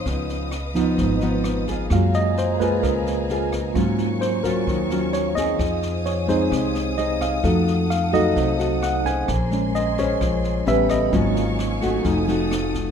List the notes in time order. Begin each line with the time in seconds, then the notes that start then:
Already playing: F5 D#6
0.05 C#2 C#3 F3 B3 D#4 B4 D#5, kick, snare
0.29 snare
0.51 cross-stick, snare
0.74 F3 B3 D#4, kick, snare
0.98 G#1 G#2, kick, snare
1.21 F3 B3 D#4, snare
1.44 cross-stick, snare
1.68 A#3 F4 G#4, kick, snare
1.90 F#2 F#3 G#3 A#3 F4 G#4 F5 G#5 A#5, kick, cross-stick, snare
2.13 D#5, snare
2.37 C5, snare
2.60 G#3 A#3 F4 G#4 B4, kick, snare
2.83 C#2 C#3 A#4, kick, cross-stick, snare
3.06 snare
3.29 A#3 F4 G#4, snare
3.52 kick, cross-stick, snare
3.74 G#2 F#3 A#3 C#4 F4 A#4 F5 C#6, kick, snare
3.99 snare
4.21 C5, cross-stick, snare
4.44 F#3 C#4 F4 A#4, kick, snare
4.67 D#2 D#3, kick, snare
4.90 F#3 C#4 F4, snare
5.13 C#5, cross-stick, snare
5.35 C4 D#4 G#4 D#5, kick, snare
5.59 F2 F3 C5 G#5 D#6, kick, cross-stick, snare
5.82 snare
6.05 C#5, snare
6.28 G#3 C4 D#4 G#4 C5, kick, snare
6.51 C2 C3, kick, cross-stick, snare
6.75 snare
6.98 C4 D#4 G#4 D#5, snare
7.21 F5, kick, cross-stick, snare
7.43 F2 F3 A3 D#4 F#4 A4 F#5, kick, snare
7.67 snare
7.90 F5, cross-stick, snare
8.12 F#3 A3 D#4 F#4 A4 D#5, kick, snare
8.36 C2 C3, kick, snare
8.59 D#4 F#4 A4, snare
8.82 F#5, cross-stick, snare
9.05 C#4 G#4 C5 G#5, kick, snare
9.28 A#1 A#3 A#4 G#5 C6, kick, cross-stick, snare
9.51 G#3 C#4, snare
9.75 D#5, snare
9.98 C#4 G#4 C5 C#5, kick, snare
10.20 A#1 F3, kick, cross-stick, snare
10.44 snare
10.66 A1 G3 B3 C#4 G4 A4 B4 E5 G5 B5, snare
10.89 D#5, kick, cross-stick, snare
11.12 G#1 G#2 F#3 A#3 C#4 F4 A#4 F5 G#5 C#6, kick, snare
11.36 snare
11.59 cross-stick, snare
11.82 A3 D#4 F#4, kick, snare
12.04 F1 F3 A3 D#4 A4 F5 D#6, kick, snare
12.28 A3 D#4 F#4, snare
12.51 cross-stick, snare
12.74 kick, snare